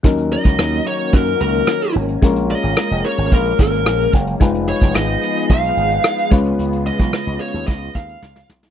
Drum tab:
HH |xxxxxxxxxxxxxxxx|xxxxxxxxxxxxxxxx|xxxxxxxxxxxxxxxx|xxxxxxxxxxxx----|
SD |----r-------r---|----r-------r---|----r-------r---|----r-------oooo|
BD |o--o----o-------|o-------o-o---o-|o--o----o-----o-|---o----o-o-----|